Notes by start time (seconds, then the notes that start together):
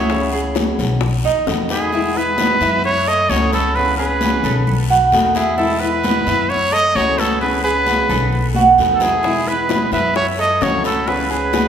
Already playing: C#2 C#5 E5
0.10 C#3 E3 B3 C#4 G#4, high bongo, high conga, long guiro
0.33 G#4, high bongo, high conga
0.55 E3 B3 C#4 G#4, high bongo, high conga, short guiro
0.79 B1, high bongo, high conga, low conga, short guiro
1.01 muted nylon-string guitar stroke, high bongo, high conga, long guiro
1.24 D#2 D#4, high bongo, high conga
1.47 E2 D#3 A3 B3 F#4, high bongo, low bongo, high conga, short guiro
1.69 D#3 A3 B3 F#4 G#4 B4, short guiro
1.93 B2 D#3 G#3 B3 E4, high conga, long guiro
2.16 G#3 B3 E4 B4, high conga
2.38 B2 D#3 G#3 B3 E4, high conga, short guiro
2.61 F#2 G#3 B3 E4 E5, high conga, short guiro
2.84 C#5, muted nylon-string guitar stroke, high conga, long guiro
3.06 A4 D#5, high conga
3.29 C#2 C#3 E3 A3 C#4 F#4 C#5, high conga, short guiro
3.52 A3 C#4 F#4 A4 B4, short guiro
3.75 C#3 E3 B3 C#4 G#4 B4, high conga, long guiro
3.97 B3 C#4 G#4 B4, high conga
4.21 C#3 E3 B3 C#4 G#4, high conga, short guiro
4.43 B1 B3 C#4 G#4 A4, high conga, low conga, short guiro
4.67 muted nylon-string guitar stroke, high conga, low conga, long guiro
4.90 F#4, high conga
5.12 E2 B2 D#3 A3 B3 F#4, high conga, short guiro
5.35 A3 B3 E4 F#4 G#4, high conga, short guiro
5.58 B2 D#3 G#3 B3 E4 A4, high conga, long guiro
5.80 G#3 B3 E4 B4, high conga
6.03 B2 D#3 G#3 B3 E4, high conga, short guiro
6.27 F#2 G#3 B3 E4 E5, high conga, short guiro
6.49 C#5, muted nylon-string guitar stroke, high conga, long guiro
6.72 A4 D#5, high conga
6.95 C#2 C#3 E3 A3 C#4 F#4 C#5, high conga, short guiro
7.18 A3 C#4 F#4 A4 B4, high conga, short guiro
7.41 C#3 E3 B3 C#4 G#4 B4, high conga, long guiro
7.64 B3 C#4 G#4 B4, high conga
7.87 C#3 E3 B3 C#4 G#4, high conga, short guiro
8.09 B1 B3 C#4 G#4 A4, high conga, low conga, short guiro
8.33 muted nylon-string guitar stroke, high conga, long guiro
8.55 F#4, high conga
8.78 E2 B2 D#3 A3 B3 F#4, short guiro
8.86 low conga
8.95 A4
9.00 A3 B3 E4 F#4 G#4, low conga, short guiro
9.23 B2 D#3 G#3 B3 E4, high bongo, high conga, long guiro
9.47 G#3 B3 E4 B4, high bongo, high conga
9.69 B2 D#3 G#3 B3 E4, high bongo, high conga, short guiro
9.92 F#2 G#3 B3 E4 B4 E5, high bongo, high conga, short guiro
10.15 C#5, muted nylon-string guitar stroke, high bongo, high conga, long guiro
10.39 A4 D#5, high bongo, high conga
10.61 C#2 C#3 E3 A3 C#4 F#4 C#5, high bongo, low bongo, high conga, short guiro
10.84 A3 C#4 F#4 A4 B4, short guiro
11.07 C#3 E3 B3 C#4 G#4 B4, high bongo, high conga, long guiro
11.30 B3 C#4 G#4 B4, high bongo, high conga
11.53 C#3 E3 B3 C#4 G#4, high bongo, high conga, short guiro